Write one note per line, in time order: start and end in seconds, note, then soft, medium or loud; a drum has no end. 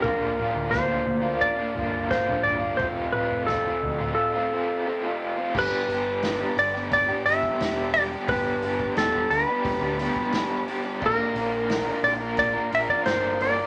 0.02 0.32 A#1 medium
0.02 0.70 A#2 medium
0.02 0.36 D3 medium
0.02 0.38 A#3 medium
0.02 0.39 D4 loud
0.02 0.41 F4 medium
0.02 0.68 A#4 loud
0.02 2.77 A#4 medium
0.02 2.76 D5 medium
0.02 2.77 F5 medium
0.02 kick loud
0.02 floor tom medium
0.38 0.72 D3 medium
0.38 0.72 A#3 medium
0.38 0.73 D4 medium
0.38 0.74 F4 medium
0.38 mid tom medium
0.55 0.97 D2 medium
0.71 1.24 A#2 medium
0.71 1.05 D3 medium
0.71 0.90 A#3 medium
0.71 0.89 D4 medium
0.71 0.88 F4 loud
0.71 1.43 C5 medium
0.71 kick loud
0.71 snare medium
0.71 floor tom medium
0.89 1.05 A#3 medium
0.89 1.06 D4 medium
0.89 1.07 F4 medium
1.06 1.34 D2 medium
1.06 muted overdriven electric guitar stroke soft
1.06 floor tom medium
1.22 1.59 A#3 soft
1.22 1.57 D4 medium
1.22 1.56 F4 medium
1.41 2.06 D5 medium
1.41 kick medium
1.57 1.74 A#3 medium
1.57 1.75 D4 medium
1.57 1.76 F4 medium
1.75 2.31 G1 medium
1.75 2.09 D3 medium
1.75 2.11 A#3 medium
1.75 2.11 D4 medium
1.75 2.11 F4 medium
1.75 floor tom medium
2.10 2.62 A#2 medium
2.10 2.62 D3 medium
2.10 2.29 A#3 medium
2.10 2.27 D4 loud
2.10 2.25 F4 loud
2.10 2.43 C5 medium
2.10 kick loud
2.10 snare medium
2.26 2.62 A#3 medium
2.26 2.61 D4 medium
2.26 2.58 F4 medium
2.26 floor tom medium
2.26 mid tom medium
2.43 2.72 G1 medium
2.43 2.76 D5 medium
2.60 2.78 A#3 medium
2.60 2.77 D4 medium
2.60 2.76 F4 medium
2.77 3.07 F1 medium
2.77 3.45 F2 medium
2.77 3.46 C3 medium
2.77 3.11 F3 medium
2.77 3.13 A3 medium
2.77 3.13 C4 medium
2.77 5.53 A4 medium
2.77 2.87 C5 loud
2.77 kick loud
2.77 floor tom medium
2.81 5.53 C4 medium
2.81 3.14 F4 medium
2.81 5.53 F5 medium
3.12 3.47 F3 medium
3.12 3.47 A3 medium
3.12 3.48 C4 medium
3.12 3.48 F4 medium
3.12 3.46 B4 medium
3.12 mid tom medium
3.30 3.72 F1 medium
3.46 3.99 F2 medium
3.46 3.99 C3 medium
3.46 3.66 F3 medium
3.46 3.65 A3 medium
3.46 3.64 C4 loud
3.46 3.63 F4 medium
3.46 4.14 A4 medium
3.46 kick loud
3.46 snare medium
3.46 floor tom medium
3.64 3.80 F3 medium
3.64 3.81 A3 medium
3.64 3.81 C4 medium
3.64 3.81 F4 medium
3.81 4.11 D2 loud
3.81 muted overdriven electric guitar stroke soft
3.81 floor tom medium
3.98 4.35 F3 soft
3.98 4.34 A3 medium
3.98 4.33 C4 medium
3.98 4.32 F4 medium
3.98 mid tom medium
4.15 5.15 A4 medium
4.33 4.50 F3 medium
4.33 4.51 A3 soft
4.33 4.52 C4 medium
4.33 4.53 F4 medium
4.51 4.86 F3 medium
4.51 4.87 A3 medium
4.51 4.87 C4 medium
4.51 4.88 F4 medium
4.86 5.37 F2 medium
4.86 5.38 C3 medium
4.86 5.05 F3 medium
4.86 5.04 A3 medium
4.86 5.02 C4 medium
4.86 5.02 F4 medium
5.03 5.39 F3 soft
5.03 5.38 A3 medium
5.03 5.37 C4 medium
5.03 5.35 F4 medium
5.37 5.54 F3 medium
5.37 5.54 A3 medium
5.37 5.53 C4 medium
5.37 5.52 F4 medium
5.54 5.68 G1 loud
5.54 6.23 G2 medium
5.54 6.23 D3 loud
5.54 5.88 G3 medium
5.54 5.89 B3 loud
5.54 5.90 D4 medium
5.54 5.92 G4 loud
5.54 10.98 B4 medium
5.54 13.67 D5 medium
5.54 8.26 G5 medium
5.54 10.97 D6 medium
5.54 kick loud
5.54 crash loud
5.59 6.62 B4 loud
5.88 6.43 G1 medium
5.88 6.24 G3 medium
5.88 6.25 B3 medium
5.88 6.26 D4 medium
5.88 open hi-hat medium
5.92 6.27 G4 medium
6.23 7.60 G2 loud
6.23 6.75 D3 medium
6.23 6.43 G3 loud
6.23 6.42 B3 medium
6.23 6.41 D4 loud
6.23 snare loud
6.23 open hi-hat medium
6.27 6.40 G4 loud
6.40 6.58 G3 medium
6.40 6.58 B3 medium
6.40 6.58 D4 medium
6.40 6.58 G4 medium
6.56 7.11 G1 loud
6.56 6.92 D5 loud
6.56 muted overdriven electric guitar stroke soft
6.56 open hi-hat medium
6.74 7.11 G3 medium
6.74 7.10 B3 medium
6.74 7.10 D4 medium
6.74 7.07 G4 medium
6.74 snare soft
6.91 7.25 D5 loud
6.91 kick loud
6.91 open hi-hat medium
7.08 7.25 G3 medium
7.08 7.27 B3 medium
7.08 7.28 D4 medium
7.08 7.28 G4 medium
7.25 7.39 G1 medium
7.25 7.61 G3 medium
7.25 7.61 B3 medium
7.25 7.63 D4 medium
7.25 7.93 E5 loud
7.25 open hi-hat medium
7.29 7.62 G4 medium
7.43 kick medium
7.60 8.15 E1 medium
7.60 8.28 G2 medium
7.60 8.29 D3 medium
7.60 7.95 G3 loud
7.60 7.96 B3 loud
7.60 7.97 D4 loud
7.60 7.98 G4 loud
7.60 snare loud
7.60 open hi-hat medium
7.94 8.15 G3 medium
7.94 8.14 B3 medium
7.94 8.13 D4 medium
7.94 8.03 D5 loud
7.94 open hi-hat medium
8.00 8.11 G4 medium
8.12 8.30 B3 medium
8.12 8.32 D4 medium
8.12 8.31 G4 medium
8.16 8.30 G3 medium
8.28 8.56 G1 loud
8.28 8.97 G2 medium
8.28 8.97 D3 loud
8.28 8.62 G3 loud
8.28 8.63 B3 medium
8.28 8.97 B4 loud
8.28 11.00 A5 medium
8.28 kick loud
8.28 open hi-hat medium
8.32 8.65 D4 medium
8.32 8.65 G4 loud
8.61 8.89 G1 medium
8.61 8.98 G3 medium
8.61 8.98 B3 medium
8.61 open hi-hat medium
8.66 9.00 D4 medium
8.66 8.99 G4 medium
8.80 kick medium
8.96 9.24 E1 loud
8.96 9.49 G2 medium
8.96 9.49 D3 medium
8.96 9.18 G3 medium
8.96 9.16 B3 loud
8.96 9.32 A4 medium
8.96 snare loud
8.96 open hi-hat medium
9.01 9.16 D4 loud
9.01 9.14 G4 loud
9.15 9.31 B3 medium
9.15 9.33 D4 medium
9.15 9.32 G4 medium
9.19 9.32 G3 medium
9.29 9.44 D2 medium
9.29 10.63 B4 medium
9.29 muted overdriven electric guitar stroke soft
9.29 open hi-hat medium
9.48 9.84 B3 medium
9.48 9.84 D4 medium
9.48 9.81 G4 medium
9.52 9.85 G3 medium
9.64 9.78 E1 loud
9.64 kick loud
9.64 open hi-hat medium
9.80 10.08 D2 medium
9.80 10.01 G4 medium
9.84 9.97 G3 medium
9.84 9.99 B3 medium
9.84 10.01 D4 medium
9.98 10.33 G3 medium
9.98 10.34 B3 medium
9.98 10.35 D4 medium
9.98 10.35 G4 medium
9.98 open hi-hat medium
10.16 kick medium
10.32 10.99 G2 medium
10.32 11.00 D3 medium
10.32 10.66 G3 loud
10.32 10.66 B3 loud
10.32 10.69 D4 loud
10.32 10.69 G4 loud
10.32 snare loud
10.32 open hi-hat medium
10.67 10.87 G3 medium
10.67 10.86 B3 medium
10.67 10.85 D4 medium
10.67 10.83 G4 loud
10.67 open hi-hat medium
10.84 11.01 B3 medium
10.84 11.05 D4 medium
10.84 10.99 G4 medium
10.88 11.01 G3 medium
10.99 11.15 A#1 loud
10.99 11.69 A#2 medium
10.99 11.69 D3 medium
10.99 13.67 A#4 medium
10.99 13.67 F5 medium
10.99 13.67 C6 medium
10.99 kick loud
10.99 crash loud
11.04 11.36 F3 medium
11.04 11.37 A#3 loud
11.04 11.38 D4 medium
11.04 11.39 A#4 medium
11.04 12.09 A#4 medium
11.34 11.89 A#1 medium
11.34 11.71 F3 medium
11.34 11.71 A#3 medium
11.34 open hi-hat medium
11.39 11.72 D4 medium
11.39 11.72 A#4 medium
11.69 13.06 A#2 loud
11.69 12.21 D3 medium
11.69 11.90 F3 medium
11.69 11.88 A#3 loud
11.69 11.87 D4 loud
11.69 11.86 A#4 loud
11.69 snare loud
11.69 open hi-hat medium
11.86 12.03 F3 medium
11.86 12.04 A#3 medium
11.86 12.04 D4 medium
11.86 12.04 A#4 medium
12.03 12.58 A#1 loud
12.03 12.13 D5 medium
12.03 muted overdriven electric guitar stroke soft
12.03 open hi-hat medium
12.21 12.55 F3 medium
12.21 12.54 A#3 medium
12.21 12.55 D4 medium
12.21 12.52 A#4 medium
12.37 12.70 D5 medium
12.37 kick loud
12.37 open hi-hat medium
12.53 12.69 F3 medium
12.53 12.70 A#3 medium
12.53 12.73 D4 medium
12.53 12.73 A#4 medium
12.70 12.86 A#1 medium
12.70 13.06 F3 medium
12.70 13.07 A#3 medium
12.70 13.08 D4 medium
12.70 open hi-hat medium
12.75 13.08 A#4 medium
12.75 12.80 E5 loud
12.89 13.05 D5 medium
12.89 kick medium
13.06 13.60 G1 medium
13.06 13.67 A#2 medium
13.06 13.67 D3 loud
13.06 13.40 F3 loud
13.06 13.42 A#3 medium
13.06 13.43 D4 loud
13.06 13.41 C5 loud
13.06 snare loud
13.06 open hi-hat medium
13.10 13.44 A#4 loud
13.40 13.58 F3 medium
13.40 13.57 A#3 medium
13.40 13.57 D4 medium
13.40 13.67 D5 medium
13.40 open hi-hat medium
13.45 13.55 A#4 medium
13.56 13.67 F3 medium
13.56 13.67 A#3 medium
13.56 13.67 D4 medium
13.56 13.67 A#4 medium